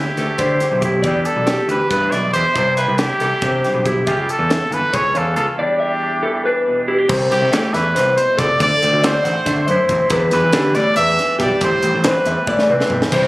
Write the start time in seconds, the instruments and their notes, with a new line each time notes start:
Already playing: clean electric guitar D3 C4 E4 E5, trumpet G4
0.17 picked electric bass D2, clean electric guitar A3 A4, snare, closed hi-hat
0.38 picked electric bass D3, clean electric guitar E4 C5, kick, closed hi-hat
0.60 clean electric guitar A2, snare, closed hi-hat
0.71 picked electric bass B1
0.81 clean electric guitar E4 G4, kick, closed hi-hat
1.02 picked electric bass E2, clean electric guitar E2 G3 D5, kick, closed hi-hat
1.07 clean electric guitar D4, trumpet G4
1.25 trumpet A4, closed hi-hat
1.36 picked electric bass B1
1.46 clean electric guitar G4, snare, closed hi-hat
1.68 picked electric bass D2, clean electric guitar E3, trumpet B4, closed hi-hat
1.90 picked electric bass G2, clean electric guitar B3 B4, trumpet B4, kick, closed hi-hat
2.02 clean electric guitar D4
2.12 picked electric bass B1, clean electric guitar B2 E5, trumpet D5, snare, closed hi-hat
2.33 picked electric bass E2, clean electric guitar G4, trumpet C5, closed hi-hat
2.56 picked electric bass C2, clean electric guitar C3 G3 D4 E4 C5, kick, closed hi-hat
2.77 trumpet B4, clean electric guitar E5, closed hi-hat
2.88 picked electric bass C2
2.98 clean electric guitar E4, trumpet G4, snare, closed hi-hat
3.20 picked electric bass C2, clean electric guitar E3 A4, snare, closed hi-hat
3.42 picked electric bass C3, clean electric guitar D4 C5, kick, closed hi-hat
3.64 clean electric guitar G2, snare, closed hi-hat
3.74 picked electric bass B1
3.85 clean electric guitar E4 G4, kick, closed hi-hat
4.07 picked electric bass C#2, clean electric guitar C#3 G3 C#4 F4 E5, trumpet G4, kick, closed hi-hat
4.29 trumpet A4, closed hi-hat
4.39 picked electric bass E2
4.50 clean electric guitar A4, snare, closed hi-hat
4.71 picked electric bass G1, clean electric guitar E3, trumpet B4, closed hi-hat
4.93 picked electric bass C#2, clean electric guitar C#4 C#5, trumpet C#5, kick, closed hi-hat
5.15 picked electric bass E2, clean electric guitar C#3 F5, trumpet A4, closed hi-hat
5.36 picked electric bass C#2, clean electric guitar F4, trumpet A4, closed hi-hat
5.58 clean electric guitar E2 G3 D4 D5, trumpet G4
5.80 clean electric guitar E5
6.03 clean electric guitar D4
6.23 clean electric guitar E3 A4
6.45 clean electric guitar D4 B4
6.68 clean electric guitar B2
6.88 clean electric guitar E4 G4
6.98 clean electric guitar G4
7.08 picked electric bass C2, clean electric guitar C3 C5, kick, crash
7.30 picked electric bass C2, clean electric guitar G3, trumpet G4, snare, closed hi-hat
7.40 picked electric bass C3, clean electric guitar A3
7.51 picked electric bass A2, clean electric guitar E3 A4, snare, closed hi-hat
7.73 picked electric bass E2, clean electric guitar A3 E5, trumpet B4, snare, closed hi-hat
7.94 picked electric bass C2, clean electric guitar A2 C5, snare, closed hi-hat
8.16 clean electric guitar B2, trumpet C5, closed hi-hat
8.37 picked electric bass C#2, clean electric guitar C3 A4, trumpet D5, kick, snare, closed hi-hat
8.60 picked electric bass D2, clean electric guitar D3, trumpet D5, kick, closed hi-hat
8.82 picked electric bass D2, clean electric guitar C4, closed hi-hat
8.93 picked electric bass D2
9.03 picked electric bass D2, clean electric guitar A3 D5, trumpet C5, snare, closed hi-hat
9.24 picked electric bass A1, clean electric guitar C4 F#5, snare, closed hi-hat
9.46 picked electric bass D3, clean electric guitar A3 E5, kick, snare, closed hi-hat
9.67 picked electric bass F#2, clean electric guitar E4 C5, closed hi-hat
9.89 picked electric bass A1, clean electric guitar C4, kick, closed hi-hat
10.10 picked electric bass E2, clean electric guitar E2 B4, kick, closed hi-hat
10.31 picked electric bass E2, clean electric guitar G3, trumpet B4, snare, closed hi-hat
10.43 picked electric bass E3
10.53 picked electric bass D3, clean electric guitar E3 G4, snare, closed hi-hat
10.75 picked electric bass A2, clean electric guitar G3 D5, trumpet D5, snare, closed hi-hat
10.96 picked electric bass E2, clean electric guitar E3 B4, trumpet E5, closed hi-hat
11.19 clean electric guitar D4, snare, closed hi-hat
11.39 picked electric bass B1, clean electric guitar G3 G4, trumpet D5, kick, snare, closed hi-hat
11.61 picked electric bass A1, clean electric guitar A2, trumpet C5, kick, closed hi-hat
11.83 picked electric bass A1, clean electric guitar G3, closed hi-hat
11.94 picked electric bass A1
12.04 picked electric bass A1, clean electric guitar E3 C5, snare, closed hi-hat
12.08 trumpet B4
12.25 picked electric bass E2, clean electric guitar G3 E5, closed hi-hat
12.47 picked electric bass A2, clean electric guitar E3 D5, kick, high tom
12.59 snare
12.70 picked electric bass C2, clean electric guitar C4 B4
12.80 snare
12.90 picked electric bass B1, clean electric guitar G3, floor tom
13.02 snare
13.12 picked electric bass C2, clean electric guitar C3 C5, overdriven electric guitar E3 G3 C4 E4, kick, closed hi-hat, crash